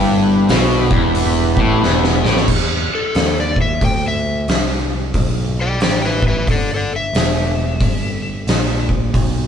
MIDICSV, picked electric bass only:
0, 0, Header, 1, 3, 480
1, 0, Start_track
1, 0, Key_signature, 1, "minor"
1, 0, Tempo, 663717
1, 1804, Time_signature, 4, 2, 24, 8
1, 6850, End_track
2, 0, Start_track
2, 0, Title_t, "Picked electric bass"
2, 0, Program_c, 0, 34
2, 0, Note_on_c, 0, 31, 95
2, 335, Note_off_c, 0, 31, 0
2, 358, Note_on_c, 0, 35, 78
2, 642, Note_off_c, 0, 35, 0
2, 656, Note_on_c, 0, 28, 91
2, 1112, Note_off_c, 0, 28, 0
2, 1131, Note_on_c, 0, 33, 87
2, 1304, Note_off_c, 0, 33, 0
2, 1328, Note_on_c, 0, 28, 91
2, 1606, Note_off_c, 0, 28, 0
2, 1612, Note_on_c, 0, 33, 86
2, 1784, Note_off_c, 0, 33, 0
2, 1795, Note_on_c, 0, 40, 72
2, 2078, Note_off_c, 0, 40, 0
2, 2280, Note_on_c, 0, 39, 70
2, 2746, Note_off_c, 0, 39, 0
2, 2758, Note_on_c, 0, 38, 73
2, 3225, Note_off_c, 0, 38, 0
2, 3241, Note_on_c, 0, 36, 90
2, 3707, Note_off_c, 0, 36, 0
2, 3718, Note_on_c, 0, 35, 80
2, 4186, Note_off_c, 0, 35, 0
2, 4200, Note_on_c, 0, 33, 72
2, 4668, Note_off_c, 0, 33, 0
2, 4681, Note_on_c, 0, 31, 78
2, 5149, Note_off_c, 0, 31, 0
2, 5159, Note_on_c, 0, 28, 94
2, 5628, Note_off_c, 0, 28, 0
2, 5645, Note_on_c, 0, 31, 80
2, 6112, Note_off_c, 0, 31, 0
2, 6126, Note_on_c, 0, 34, 74
2, 6594, Note_off_c, 0, 34, 0
2, 6607, Note_on_c, 0, 35, 75
2, 6850, Note_off_c, 0, 35, 0
2, 6850, End_track
3, 0, Start_track
3, 0, Title_t, "Muted picked electric bass strokes"
3, 2098, Note_on_c, 9, 29, 40
3, 2170, Note_off_c, 9, 29, 0
3, 6850, End_track
0, 0, End_of_file